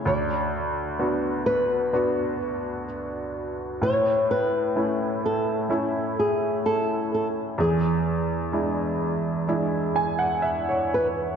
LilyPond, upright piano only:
\new Staff \with { instrumentName = "Upright piano" } { \time 4/4 \key a \major \tempo 4 = 64 << { r1 | r1 | r2 r8 gis''16 fis''16 e''16 cis''8. | } \\ { d,4 <b d' fis'>4 <b d' fis'>4 r4 | a,4 <a cis' e'>4 <a cis' e'>4 r4 | e,4 <gis d' e'>4 <gis d' e'>4 r4 | } >> }